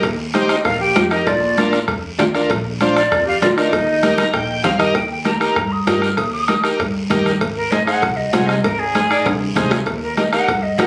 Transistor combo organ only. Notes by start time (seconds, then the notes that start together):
0.34 D#4 G4 C5
0.96 D#4 G4 C5
1.11 D#4 G4 A#4
1.58 D4 F4 A#4
2.18 D4 F4 G4
2.34 D4 F4 A#4
2.81 D4 F4 C5
3.42 D4 F4 A#4
3.58 D4 F4 A#4
4.03 D#4 G4 A#4
4.19 A#5
4.34 G5
4.64 D#4 G4 C5 F5
4.79 D#4 G4 A#4 D#5
5.25 D#4 G4 A#4
5.40 D#4 G4 A#4
5.87 D#4 G4 A#4
6.49 D#4 G4 A#4
6.64 D#4 G4 A#4
7.10 D#4 G4 A#4
7.72 D#4 G#4 C5
7.87 D#4 G#4 C5
8.33 D#4 G#4 C5
8.95 D#4 G#4 C5
9.10 D#4 G#4 D5
9.56 D#4 G#4 C5
10.18 D#4 G4 A#4
10.32 D#4 G4 A#4
10.79 D#4 G4 A#4